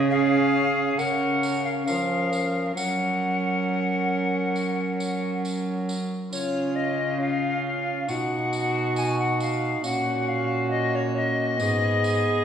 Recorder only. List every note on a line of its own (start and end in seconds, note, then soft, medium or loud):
0.10 0.97 F5 loud
0.98 1.63 F#5 loud
1.64 1.70 F5 loud
1.86 2.74 F5 medium
2.75 5.39 F#5 medium
6.32 6.77 C#5 medium
6.76 7.20 D#5 medium
7.21 7.64 F5 medium
7.65 8.10 F5 medium
8.09 8.96 F#5 medium
8.97 9.18 G#5 medium
9.20 9.40 F#5 medium
9.42 9.84 F5 medium
9.85 10.30 F#5 medium
10.28 10.70 F5 medium
10.71 10.97 D#5 medium
10.95 11.15 C#5 medium
11.16 12.44 D#5 loud